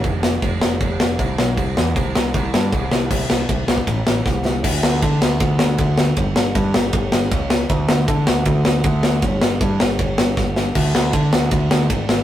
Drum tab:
CC |x---x---x---x---|x---x---x---x---|x---------------|x---------------|
RD |----------------|----------------|----x---x-------|----x---x---x---|
SD |--o---o---o---o-|--o---o---o---o-|--o---o---o-o-o-|--o---o---o---o-|
BD |o---o---o---o---|o---o---o---o---|o---o--oo---o---|o---o---o---o---|

CC |----------------|----------------|----------------|x---------------|
RD |x---x---x---x---|x---x---x---x---|x---x---x-------|----x---x---x---|
SD |--o---o---o---o-|--o---o---o---o-|--o---o---o-o-o-|--o---o---o---o-|
BD |o---o---o---o---|o---o---o---o---|o---o---o---o---|o---o---o---o---|